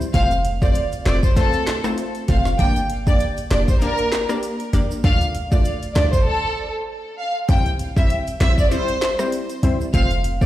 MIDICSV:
0, 0, Header, 1, 5, 480
1, 0, Start_track
1, 0, Tempo, 612245
1, 111, Time_signature, 4, 2, 24, 8
1, 8200, End_track
2, 0, Start_track
2, 0, Title_t, "Violin section"
2, 0, Program_c, 0, 48
2, 111, Note_on_c, 0, 77, 101
2, 224, Note_off_c, 0, 77, 0
2, 486, Note_on_c, 0, 74, 83
2, 575, Note_off_c, 0, 74, 0
2, 830, Note_on_c, 0, 74, 84
2, 944, Note_off_c, 0, 74, 0
2, 965, Note_on_c, 0, 72, 80
2, 1054, Note_off_c, 0, 72, 0
2, 1072, Note_on_c, 0, 69, 103
2, 1424, Note_off_c, 0, 69, 0
2, 1792, Note_on_c, 0, 77, 78
2, 1905, Note_off_c, 0, 77, 0
2, 2031, Note_on_c, 0, 79, 101
2, 2144, Note_off_c, 0, 79, 0
2, 2405, Note_on_c, 0, 74, 83
2, 2494, Note_off_c, 0, 74, 0
2, 2751, Note_on_c, 0, 74, 83
2, 2864, Note_off_c, 0, 74, 0
2, 2887, Note_on_c, 0, 72, 79
2, 2975, Note_off_c, 0, 72, 0
2, 2993, Note_on_c, 0, 70, 100
2, 3344, Note_off_c, 0, 70, 0
2, 3950, Note_on_c, 0, 77, 103
2, 4064, Note_off_c, 0, 77, 0
2, 4324, Note_on_c, 0, 74, 80
2, 4414, Note_off_c, 0, 74, 0
2, 4670, Note_on_c, 0, 74, 84
2, 4783, Note_off_c, 0, 74, 0
2, 4805, Note_on_c, 0, 72, 82
2, 4894, Note_off_c, 0, 72, 0
2, 4910, Note_on_c, 0, 69, 103
2, 5262, Note_off_c, 0, 69, 0
2, 5629, Note_on_c, 0, 77, 77
2, 5743, Note_off_c, 0, 77, 0
2, 5870, Note_on_c, 0, 79, 103
2, 5984, Note_off_c, 0, 79, 0
2, 6245, Note_on_c, 0, 76, 82
2, 6334, Note_off_c, 0, 76, 0
2, 6590, Note_on_c, 0, 76, 87
2, 6704, Note_off_c, 0, 76, 0
2, 6725, Note_on_c, 0, 74, 82
2, 6814, Note_off_c, 0, 74, 0
2, 6829, Note_on_c, 0, 72, 101
2, 7182, Note_off_c, 0, 72, 0
2, 7789, Note_on_c, 0, 77, 102
2, 7903, Note_off_c, 0, 77, 0
2, 8164, Note_on_c, 0, 74, 83
2, 8200, Note_off_c, 0, 74, 0
2, 8200, End_track
3, 0, Start_track
3, 0, Title_t, "Synth pluck"
3, 0, Program_c, 1, 84
3, 0, Note_on_c, 1, 55, 83
3, 0, Note_on_c, 1, 60, 73
3, 0, Note_on_c, 1, 64, 74
3, 0, Note_on_c, 1, 72, 90
3, 93, Note_off_c, 1, 55, 0
3, 94, Note_off_c, 1, 60, 0
3, 95, Note_off_c, 1, 64, 0
3, 95, Note_off_c, 1, 72, 0
3, 109, Note_on_c, 1, 57, 99
3, 111, Note_on_c, 1, 60, 89
3, 113, Note_on_c, 1, 65, 87
3, 114, Note_on_c, 1, 72, 107
3, 240, Note_off_c, 1, 57, 0
3, 241, Note_off_c, 1, 60, 0
3, 242, Note_off_c, 1, 65, 0
3, 242, Note_off_c, 1, 72, 0
3, 485, Note_on_c, 1, 57, 78
3, 486, Note_on_c, 1, 60, 69
3, 488, Note_on_c, 1, 65, 72
3, 489, Note_on_c, 1, 72, 87
3, 587, Note_off_c, 1, 57, 0
3, 588, Note_off_c, 1, 60, 0
3, 589, Note_off_c, 1, 65, 0
3, 589, Note_off_c, 1, 72, 0
3, 829, Note_on_c, 1, 57, 81
3, 831, Note_on_c, 1, 60, 69
3, 833, Note_on_c, 1, 65, 76
3, 834, Note_on_c, 1, 72, 86
3, 960, Note_off_c, 1, 57, 0
3, 961, Note_off_c, 1, 60, 0
3, 962, Note_off_c, 1, 65, 0
3, 963, Note_off_c, 1, 72, 0
3, 1068, Note_on_c, 1, 57, 96
3, 1070, Note_on_c, 1, 60, 88
3, 1072, Note_on_c, 1, 65, 91
3, 1073, Note_on_c, 1, 72, 111
3, 1412, Note_off_c, 1, 57, 0
3, 1413, Note_off_c, 1, 60, 0
3, 1414, Note_off_c, 1, 65, 0
3, 1414, Note_off_c, 1, 72, 0
3, 1443, Note_on_c, 1, 57, 77
3, 1445, Note_on_c, 1, 60, 72
3, 1446, Note_on_c, 1, 65, 73
3, 1448, Note_on_c, 1, 72, 84
3, 1765, Note_off_c, 1, 57, 0
3, 1765, Note_off_c, 1, 60, 0
3, 1766, Note_off_c, 1, 65, 0
3, 1767, Note_off_c, 1, 72, 0
3, 1790, Note_on_c, 1, 57, 79
3, 1791, Note_on_c, 1, 60, 76
3, 1792, Note_on_c, 1, 65, 75
3, 1794, Note_on_c, 1, 72, 91
3, 2014, Note_off_c, 1, 57, 0
3, 2014, Note_off_c, 1, 60, 0
3, 2015, Note_off_c, 1, 65, 0
3, 2016, Note_off_c, 1, 72, 0
3, 2029, Note_on_c, 1, 58, 97
3, 2030, Note_on_c, 1, 62, 91
3, 2032, Note_on_c, 1, 67, 92
3, 2034, Note_on_c, 1, 74, 106
3, 2160, Note_off_c, 1, 58, 0
3, 2161, Note_off_c, 1, 62, 0
3, 2161, Note_off_c, 1, 67, 0
3, 2162, Note_off_c, 1, 74, 0
3, 2404, Note_on_c, 1, 58, 80
3, 2406, Note_on_c, 1, 62, 72
3, 2407, Note_on_c, 1, 67, 70
3, 2408, Note_on_c, 1, 74, 87
3, 2507, Note_off_c, 1, 58, 0
3, 2508, Note_off_c, 1, 62, 0
3, 2509, Note_off_c, 1, 67, 0
3, 2509, Note_off_c, 1, 74, 0
3, 2750, Note_on_c, 1, 58, 77
3, 2752, Note_on_c, 1, 62, 76
3, 2753, Note_on_c, 1, 67, 75
3, 2755, Note_on_c, 1, 74, 88
3, 2880, Note_off_c, 1, 58, 0
3, 2881, Note_off_c, 1, 62, 0
3, 2882, Note_off_c, 1, 67, 0
3, 2883, Note_off_c, 1, 74, 0
3, 2990, Note_on_c, 1, 58, 98
3, 2992, Note_on_c, 1, 62, 90
3, 2993, Note_on_c, 1, 67, 89
3, 2995, Note_on_c, 1, 74, 112
3, 3333, Note_off_c, 1, 58, 0
3, 3334, Note_off_c, 1, 62, 0
3, 3334, Note_off_c, 1, 67, 0
3, 3335, Note_off_c, 1, 74, 0
3, 3365, Note_on_c, 1, 58, 79
3, 3366, Note_on_c, 1, 62, 72
3, 3368, Note_on_c, 1, 67, 71
3, 3370, Note_on_c, 1, 74, 87
3, 3686, Note_off_c, 1, 58, 0
3, 3686, Note_off_c, 1, 62, 0
3, 3687, Note_off_c, 1, 67, 0
3, 3688, Note_off_c, 1, 74, 0
3, 3710, Note_on_c, 1, 58, 78
3, 3711, Note_on_c, 1, 62, 72
3, 3713, Note_on_c, 1, 67, 74
3, 3715, Note_on_c, 1, 74, 86
3, 3934, Note_off_c, 1, 58, 0
3, 3934, Note_off_c, 1, 62, 0
3, 3935, Note_off_c, 1, 67, 0
3, 3936, Note_off_c, 1, 74, 0
3, 3950, Note_on_c, 1, 57, 95
3, 3952, Note_on_c, 1, 62, 93
3, 3953, Note_on_c, 1, 65, 90
3, 3954, Note_on_c, 1, 74, 109
3, 4080, Note_off_c, 1, 57, 0
3, 4081, Note_off_c, 1, 62, 0
3, 4082, Note_off_c, 1, 65, 0
3, 4083, Note_off_c, 1, 74, 0
3, 4325, Note_on_c, 1, 57, 74
3, 4327, Note_on_c, 1, 62, 73
3, 4328, Note_on_c, 1, 65, 70
3, 4329, Note_on_c, 1, 74, 84
3, 4427, Note_off_c, 1, 57, 0
3, 4428, Note_off_c, 1, 62, 0
3, 4429, Note_off_c, 1, 65, 0
3, 4430, Note_off_c, 1, 74, 0
3, 4670, Note_on_c, 1, 57, 79
3, 4672, Note_on_c, 1, 62, 72
3, 4673, Note_on_c, 1, 65, 73
3, 4675, Note_on_c, 1, 74, 84
3, 4801, Note_off_c, 1, 57, 0
3, 4801, Note_off_c, 1, 62, 0
3, 4802, Note_off_c, 1, 65, 0
3, 4803, Note_off_c, 1, 74, 0
3, 5869, Note_on_c, 1, 55, 97
3, 5871, Note_on_c, 1, 60, 86
3, 5873, Note_on_c, 1, 64, 88
3, 5874, Note_on_c, 1, 72, 107
3, 6000, Note_off_c, 1, 55, 0
3, 6001, Note_off_c, 1, 60, 0
3, 6002, Note_off_c, 1, 64, 0
3, 6003, Note_off_c, 1, 72, 0
3, 6244, Note_on_c, 1, 55, 81
3, 6246, Note_on_c, 1, 60, 70
3, 6247, Note_on_c, 1, 64, 71
3, 6249, Note_on_c, 1, 72, 84
3, 6347, Note_off_c, 1, 55, 0
3, 6348, Note_off_c, 1, 60, 0
3, 6348, Note_off_c, 1, 64, 0
3, 6349, Note_off_c, 1, 72, 0
3, 6589, Note_on_c, 1, 55, 79
3, 6590, Note_on_c, 1, 60, 73
3, 6593, Note_on_c, 1, 64, 70
3, 6594, Note_on_c, 1, 72, 85
3, 6720, Note_off_c, 1, 55, 0
3, 6721, Note_off_c, 1, 60, 0
3, 6722, Note_off_c, 1, 64, 0
3, 6722, Note_off_c, 1, 72, 0
3, 6829, Note_on_c, 1, 55, 100
3, 6831, Note_on_c, 1, 60, 91
3, 6832, Note_on_c, 1, 64, 87
3, 6833, Note_on_c, 1, 72, 105
3, 7172, Note_off_c, 1, 55, 0
3, 7173, Note_off_c, 1, 60, 0
3, 7174, Note_off_c, 1, 64, 0
3, 7174, Note_off_c, 1, 72, 0
3, 7204, Note_on_c, 1, 55, 82
3, 7205, Note_on_c, 1, 60, 70
3, 7206, Note_on_c, 1, 64, 74
3, 7208, Note_on_c, 1, 72, 88
3, 7525, Note_off_c, 1, 55, 0
3, 7526, Note_off_c, 1, 60, 0
3, 7526, Note_off_c, 1, 64, 0
3, 7527, Note_off_c, 1, 72, 0
3, 7549, Note_on_c, 1, 55, 81
3, 7551, Note_on_c, 1, 60, 78
3, 7552, Note_on_c, 1, 64, 76
3, 7554, Note_on_c, 1, 72, 86
3, 7773, Note_off_c, 1, 55, 0
3, 7774, Note_off_c, 1, 60, 0
3, 7775, Note_off_c, 1, 64, 0
3, 7776, Note_off_c, 1, 72, 0
3, 7789, Note_on_c, 1, 57, 95
3, 7791, Note_on_c, 1, 60, 88
3, 7792, Note_on_c, 1, 65, 89
3, 7794, Note_on_c, 1, 72, 108
3, 7920, Note_off_c, 1, 57, 0
3, 7921, Note_off_c, 1, 60, 0
3, 7922, Note_off_c, 1, 65, 0
3, 7922, Note_off_c, 1, 72, 0
3, 8163, Note_on_c, 1, 57, 76
3, 8165, Note_on_c, 1, 60, 72
3, 8167, Note_on_c, 1, 65, 68
3, 8168, Note_on_c, 1, 72, 85
3, 8200, Note_off_c, 1, 57, 0
3, 8200, Note_off_c, 1, 60, 0
3, 8200, Note_off_c, 1, 65, 0
3, 8200, Note_off_c, 1, 72, 0
3, 8200, End_track
4, 0, Start_track
4, 0, Title_t, "808-style bass"
4, 0, Program_c, 2, 38
4, 111, Note_on_c, 2, 29, 110
4, 695, Note_off_c, 2, 29, 0
4, 831, Note_on_c, 2, 29, 99
4, 943, Note_off_c, 2, 29, 0
4, 1793, Note_on_c, 2, 29, 102
4, 1991, Note_off_c, 2, 29, 0
4, 2031, Note_on_c, 2, 31, 114
4, 2615, Note_off_c, 2, 31, 0
4, 2752, Note_on_c, 2, 29, 101
4, 2863, Note_off_c, 2, 29, 0
4, 3711, Note_on_c, 2, 31, 89
4, 3823, Note_off_c, 2, 31, 0
4, 3952, Note_on_c, 2, 38, 116
4, 4535, Note_off_c, 2, 38, 0
4, 4671, Note_on_c, 2, 38, 98
4, 4783, Note_off_c, 2, 38, 0
4, 5871, Note_on_c, 2, 36, 107
4, 6455, Note_off_c, 2, 36, 0
4, 6591, Note_on_c, 2, 34, 102
4, 6702, Note_off_c, 2, 34, 0
4, 7551, Note_on_c, 2, 36, 88
4, 7662, Note_off_c, 2, 36, 0
4, 7791, Note_on_c, 2, 29, 107
4, 8200, Note_off_c, 2, 29, 0
4, 8200, End_track
5, 0, Start_track
5, 0, Title_t, "Drums"
5, 10, Note_on_c, 9, 82, 77
5, 88, Note_off_c, 9, 82, 0
5, 110, Note_on_c, 9, 42, 84
5, 110, Note_on_c, 9, 82, 77
5, 111, Note_on_c, 9, 36, 114
5, 188, Note_off_c, 9, 82, 0
5, 189, Note_off_c, 9, 36, 0
5, 189, Note_off_c, 9, 42, 0
5, 244, Note_on_c, 9, 42, 55
5, 248, Note_on_c, 9, 82, 57
5, 322, Note_off_c, 9, 42, 0
5, 327, Note_off_c, 9, 82, 0
5, 350, Note_on_c, 9, 42, 86
5, 354, Note_on_c, 9, 82, 49
5, 428, Note_off_c, 9, 42, 0
5, 432, Note_off_c, 9, 82, 0
5, 485, Note_on_c, 9, 36, 107
5, 486, Note_on_c, 9, 82, 79
5, 563, Note_off_c, 9, 36, 0
5, 564, Note_off_c, 9, 82, 0
5, 585, Note_on_c, 9, 82, 64
5, 592, Note_on_c, 9, 42, 84
5, 663, Note_off_c, 9, 82, 0
5, 670, Note_off_c, 9, 42, 0
5, 724, Note_on_c, 9, 82, 59
5, 727, Note_on_c, 9, 42, 55
5, 802, Note_off_c, 9, 82, 0
5, 806, Note_off_c, 9, 42, 0
5, 828, Note_on_c, 9, 42, 79
5, 830, Note_on_c, 9, 82, 58
5, 831, Note_on_c, 9, 38, 111
5, 838, Note_on_c, 9, 39, 94
5, 906, Note_off_c, 9, 42, 0
5, 909, Note_off_c, 9, 38, 0
5, 909, Note_off_c, 9, 82, 0
5, 917, Note_off_c, 9, 39, 0
5, 965, Note_on_c, 9, 36, 95
5, 966, Note_on_c, 9, 82, 74
5, 1044, Note_off_c, 9, 36, 0
5, 1045, Note_off_c, 9, 82, 0
5, 1069, Note_on_c, 9, 82, 66
5, 1071, Note_on_c, 9, 36, 98
5, 1071, Note_on_c, 9, 42, 74
5, 1148, Note_off_c, 9, 82, 0
5, 1150, Note_off_c, 9, 36, 0
5, 1150, Note_off_c, 9, 42, 0
5, 1197, Note_on_c, 9, 82, 53
5, 1205, Note_on_c, 9, 42, 50
5, 1276, Note_off_c, 9, 82, 0
5, 1283, Note_off_c, 9, 42, 0
5, 1310, Note_on_c, 9, 38, 125
5, 1310, Note_on_c, 9, 42, 73
5, 1313, Note_on_c, 9, 82, 50
5, 1317, Note_on_c, 9, 39, 102
5, 1388, Note_off_c, 9, 42, 0
5, 1389, Note_off_c, 9, 38, 0
5, 1391, Note_off_c, 9, 82, 0
5, 1396, Note_off_c, 9, 39, 0
5, 1444, Note_on_c, 9, 65, 75
5, 1444, Note_on_c, 9, 82, 78
5, 1445, Note_on_c, 9, 37, 102
5, 1523, Note_off_c, 9, 37, 0
5, 1523, Note_off_c, 9, 65, 0
5, 1523, Note_off_c, 9, 82, 0
5, 1550, Note_on_c, 9, 42, 74
5, 1553, Note_on_c, 9, 82, 79
5, 1628, Note_off_c, 9, 42, 0
5, 1631, Note_off_c, 9, 82, 0
5, 1684, Note_on_c, 9, 42, 51
5, 1687, Note_on_c, 9, 82, 52
5, 1762, Note_off_c, 9, 42, 0
5, 1766, Note_off_c, 9, 82, 0
5, 1790, Note_on_c, 9, 42, 83
5, 1790, Note_on_c, 9, 82, 61
5, 1793, Note_on_c, 9, 36, 103
5, 1868, Note_off_c, 9, 42, 0
5, 1869, Note_off_c, 9, 82, 0
5, 1872, Note_off_c, 9, 36, 0
5, 1924, Note_on_c, 9, 38, 69
5, 1930, Note_on_c, 9, 82, 78
5, 2003, Note_off_c, 9, 38, 0
5, 2008, Note_off_c, 9, 82, 0
5, 2030, Note_on_c, 9, 82, 80
5, 2031, Note_on_c, 9, 36, 103
5, 2031, Note_on_c, 9, 42, 84
5, 2108, Note_off_c, 9, 82, 0
5, 2109, Note_off_c, 9, 42, 0
5, 2110, Note_off_c, 9, 36, 0
5, 2164, Note_on_c, 9, 42, 53
5, 2167, Note_on_c, 9, 82, 55
5, 2243, Note_off_c, 9, 42, 0
5, 2246, Note_off_c, 9, 82, 0
5, 2271, Note_on_c, 9, 42, 85
5, 2272, Note_on_c, 9, 82, 49
5, 2349, Note_off_c, 9, 42, 0
5, 2351, Note_off_c, 9, 82, 0
5, 2406, Note_on_c, 9, 36, 104
5, 2406, Note_on_c, 9, 82, 80
5, 2484, Note_off_c, 9, 36, 0
5, 2484, Note_off_c, 9, 82, 0
5, 2504, Note_on_c, 9, 82, 66
5, 2513, Note_on_c, 9, 42, 84
5, 2583, Note_off_c, 9, 82, 0
5, 2591, Note_off_c, 9, 42, 0
5, 2645, Note_on_c, 9, 82, 61
5, 2648, Note_on_c, 9, 42, 51
5, 2723, Note_off_c, 9, 82, 0
5, 2727, Note_off_c, 9, 42, 0
5, 2749, Note_on_c, 9, 42, 79
5, 2751, Note_on_c, 9, 82, 55
5, 2752, Note_on_c, 9, 38, 111
5, 2759, Note_on_c, 9, 39, 89
5, 2827, Note_off_c, 9, 42, 0
5, 2830, Note_off_c, 9, 38, 0
5, 2830, Note_off_c, 9, 82, 0
5, 2838, Note_off_c, 9, 39, 0
5, 2887, Note_on_c, 9, 36, 99
5, 2887, Note_on_c, 9, 82, 76
5, 2965, Note_off_c, 9, 36, 0
5, 2966, Note_off_c, 9, 82, 0
5, 2990, Note_on_c, 9, 82, 70
5, 2994, Note_on_c, 9, 42, 76
5, 3068, Note_off_c, 9, 82, 0
5, 3072, Note_off_c, 9, 42, 0
5, 3117, Note_on_c, 9, 82, 53
5, 3126, Note_on_c, 9, 42, 49
5, 3196, Note_off_c, 9, 82, 0
5, 3204, Note_off_c, 9, 42, 0
5, 3232, Note_on_c, 9, 38, 127
5, 3232, Note_on_c, 9, 42, 76
5, 3233, Note_on_c, 9, 82, 52
5, 3239, Note_on_c, 9, 39, 103
5, 3310, Note_off_c, 9, 38, 0
5, 3310, Note_off_c, 9, 42, 0
5, 3311, Note_off_c, 9, 82, 0
5, 3318, Note_off_c, 9, 39, 0
5, 3366, Note_on_c, 9, 82, 75
5, 3367, Note_on_c, 9, 37, 100
5, 3444, Note_off_c, 9, 82, 0
5, 3445, Note_off_c, 9, 37, 0
5, 3471, Note_on_c, 9, 42, 76
5, 3473, Note_on_c, 9, 82, 81
5, 3549, Note_off_c, 9, 42, 0
5, 3552, Note_off_c, 9, 82, 0
5, 3605, Note_on_c, 9, 42, 52
5, 3608, Note_on_c, 9, 82, 52
5, 3684, Note_off_c, 9, 42, 0
5, 3687, Note_off_c, 9, 82, 0
5, 3711, Note_on_c, 9, 42, 84
5, 3713, Note_on_c, 9, 82, 63
5, 3790, Note_off_c, 9, 42, 0
5, 3791, Note_off_c, 9, 82, 0
5, 3851, Note_on_c, 9, 82, 82
5, 3929, Note_off_c, 9, 82, 0
5, 3951, Note_on_c, 9, 42, 86
5, 3951, Note_on_c, 9, 82, 79
5, 3952, Note_on_c, 9, 36, 107
5, 4029, Note_off_c, 9, 82, 0
5, 4030, Note_off_c, 9, 36, 0
5, 4030, Note_off_c, 9, 42, 0
5, 4084, Note_on_c, 9, 42, 55
5, 4089, Note_on_c, 9, 82, 54
5, 4163, Note_off_c, 9, 42, 0
5, 4167, Note_off_c, 9, 82, 0
5, 4191, Note_on_c, 9, 42, 87
5, 4195, Note_on_c, 9, 82, 52
5, 4270, Note_off_c, 9, 42, 0
5, 4274, Note_off_c, 9, 82, 0
5, 4326, Note_on_c, 9, 36, 102
5, 4327, Note_on_c, 9, 82, 81
5, 4404, Note_off_c, 9, 36, 0
5, 4406, Note_off_c, 9, 82, 0
5, 4427, Note_on_c, 9, 82, 64
5, 4434, Note_on_c, 9, 42, 83
5, 4505, Note_off_c, 9, 82, 0
5, 4512, Note_off_c, 9, 42, 0
5, 4567, Note_on_c, 9, 82, 59
5, 4568, Note_on_c, 9, 42, 53
5, 4646, Note_off_c, 9, 42, 0
5, 4646, Note_off_c, 9, 82, 0
5, 4668, Note_on_c, 9, 42, 75
5, 4672, Note_on_c, 9, 38, 117
5, 4675, Note_on_c, 9, 82, 55
5, 4679, Note_on_c, 9, 39, 94
5, 4747, Note_off_c, 9, 42, 0
5, 4750, Note_off_c, 9, 38, 0
5, 4753, Note_off_c, 9, 82, 0
5, 4757, Note_off_c, 9, 39, 0
5, 4806, Note_on_c, 9, 36, 96
5, 4808, Note_on_c, 9, 82, 76
5, 4885, Note_off_c, 9, 36, 0
5, 4887, Note_off_c, 9, 82, 0
5, 5871, Note_on_c, 9, 36, 110
5, 5871, Note_on_c, 9, 42, 86
5, 5872, Note_on_c, 9, 82, 80
5, 5949, Note_off_c, 9, 42, 0
5, 5950, Note_off_c, 9, 36, 0
5, 5950, Note_off_c, 9, 82, 0
5, 6005, Note_on_c, 9, 42, 53
5, 6009, Note_on_c, 9, 82, 52
5, 6083, Note_off_c, 9, 42, 0
5, 6088, Note_off_c, 9, 82, 0
5, 6110, Note_on_c, 9, 42, 84
5, 6114, Note_on_c, 9, 82, 52
5, 6189, Note_off_c, 9, 42, 0
5, 6192, Note_off_c, 9, 82, 0
5, 6245, Note_on_c, 9, 36, 106
5, 6247, Note_on_c, 9, 82, 80
5, 6324, Note_off_c, 9, 36, 0
5, 6325, Note_off_c, 9, 82, 0
5, 6345, Note_on_c, 9, 82, 61
5, 6353, Note_on_c, 9, 42, 88
5, 6424, Note_off_c, 9, 82, 0
5, 6431, Note_off_c, 9, 42, 0
5, 6486, Note_on_c, 9, 82, 59
5, 6488, Note_on_c, 9, 42, 57
5, 6564, Note_off_c, 9, 82, 0
5, 6567, Note_off_c, 9, 42, 0
5, 6588, Note_on_c, 9, 42, 79
5, 6592, Note_on_c, 9, 38, 115
5, 6592, Note_on_c, 9, 82, 58
5, 6599, Note_on_c, 9, 39, 91
5, 6667, Note_off_c, 9, 42, 0
5, 6670, Note_off_c, 9, 38, 0
5, 6671, Note_off_c, 9, 82, 0
5, 6677, Note_off_c, 9, 39, 0
5, 6726, Note_on_c, 9, 36, 91
5, 6728, Note_on_c, 9, 82, 78
5, 6804, Note_off_c, 9, 36, 0
5, 6806, Note_off_c, 9, 82, 0
5, 6833, Note_on_c, 9, 42, 75
5, 6833, Note_on_c, 9, 82, 67
5, 6911, Note_off_c, 9, 42, 0
5, 6911, Note_off_c, 9, 82, 0
5, 6960, Note_on_c, 9, 82, 52
5, 6966, Note_on_c, 9, 42, 50
5, 7038, Note_off_c, 9, 82, 0
5, 7044, Note_off_c, 9, 42, 0
5, 7071, Note_on_c, 9, 38, 127
5, 7071, Note_on_c, 9, 42, 75
5, 7075, Note_on_c, 9, 82, 51
5, 7078, Note_on_c, 9, 39, 104
5, 7149, Note_off_c, 9, 38, 0
5, 7149, Note_off_c, 9, 42, 0
5, 7153, Note_off_c, 9, 82, 0
5, 7156, Note_off_c, 9, 39, 0
5, 7205, Note_on_c, 9, 37, 99
5, 7206, Note_on_c, 9, 82, 77
5, 7284, Note_off_c, 9, 37, 0
5, 7284, Note_off_c, 9, 82, 0
5, 7310, Note_on_c, 9, 42, 75
5, 7313, Note_on_c, 9, 82, 77
5, 7388, Note_off_c, 9, 42, 0
5, 7391, Note_off_c, 9, 82, 0
5, 7444, Note_on_c, 9, 42, 52
5, 7448, Note_on_c, 9, 82, 53
5, 7522, Note_off_c, 9, 42, 0
5, 7526, Note_off_c, 9, 82, 0
5, 7551, Note_on_c, 9, 42, 81
5, 7552, Note_on_c, 9, 82, 59
5, 7629, Note_off_c, 9, 42, 0
5, 7630, Note_off_c, 9, 82, 0
5, 7690, Note_on_c, 9, 82, 80
5, 7768, Note_off_c, 9, 82, 0
5, 7791, Note_on_c, 9, 36, 106
5, 7791, Note_on_c, 9, 42, 83
5, 7791, Note_on_c, 9, 82, 81
5, 7869, Note_off_c, 9, 36, 0
5, 7869, Note_off_c, 9, 42, 0
5, 7869, Note_off_c, 9, 82, 0
5, 7924, Note_on_c, 9, 42, 55
5, 7929, Note_on_c, 9, 82, 55
5, 8002, Note_off_c, 9, 42, 0
5, 8008, Note_off_c, 9, 82, 0
5, 8031, Note_on_c, 9, 42, 86
5, 8035, Note_on_c, 9, 82, 49
5, 8109, Note_off_c, 9, 42, 0
5, 8113, Note_off_c, 9, 82, 0
5, 8165, Note_on_c, 9, 36, 108
5, 8166, Note_on_c, 9, 82, 79
5, 8200, Note_off_c, 9, 36, 0
5, 8200, Note_off_c, 9, 82, 0
5, 8200, End_track
0, 0, End_of_file